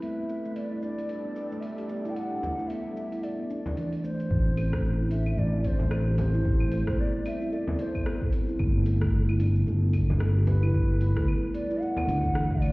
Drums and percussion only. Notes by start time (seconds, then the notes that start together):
0.02 open hi-hat, shaker
0.29 shaker
0.45 shaker
0.56 open hi-hat, shaker
0.82 shaker
0.98 open hi-hat, shaker
1.09 open hi-hat, shaker
1.36 shaker
1.52 shaker
1.62 open hi-hat, shaker
1.78 open hi-hat
1.89 shaker
2.05 open hi-hat, shaker
2.16 open hi-hat, shaker
2.43 frame drum, shaker
2.59 shaker
2.70 open hi-hat, shaker
2.97 shaker
3.12 open hi-hat, shaker
3.23 open hi-hat, shaker
3.50 shaker
3.66 frame drum, shaker
3.77 open hi-hat, shaker
3.93 open hi-hat
4.04 shaker
4.20 open hi-hat, shaker
4.31 kick, shaker
4.57 open hi-hat, claves, shaker
4.73 kick, cross-stick, shaker
4.85 shaker
5.11 open hi-hat, shaker
5.26 claves, shaker
5.38 shaker
5.64 kick, open hi-hat, shaker
5.79 frame drum, shaker
5.91 cross-stick, claves, shaker
6.18 open hi-hat, frame drum, shaker
6.34 shaker
6.45 kick, shaker
6.60 claves
6.72 open hi-hat, shaker
6.87 kick, cross-stick, shaker
6.99 shaker
7.26 open hi-hat, claves, shaker
7.42 shaker
7.53 shaker
7.67 frame drum
7.79 open hi-hat, shaker
7.95 kick, claves, shaker
8.06 cross-stick, shaker
8.22 kick
8.33 open hi-hat, shaker
8.48 shaker
8.59 kick, claves, shaker
8.86 open hi-hat, shaker
9.01 kick, cross-stick, shaker
9.13 shaker
9.29 claves
9.40 open hi-hat, shaker
9.56 shaker
9.67 shaker
9.93 kick, open hi-hat, claves, shaker
10.10 frame drum, shaker
10.20 cross-stick, shaker
10.47 open hi-hat, frame drum, shaker
10.63 claves, shaker
10.74 kick, shaker
11.01 open hi-hat, shaker
11.17 kick, cross-stick, shaker
11.28 claves, shaker
11.54 open hi-hat, shaker
11.71 shaker
11.82 shaker
11.97 frame drum, claves
12.09 open hi-hat, shaker
12.24 kick, shaker
12.35 cross-stick, shaker
12.51 kick
12.62 open hi-hat, claves, shaker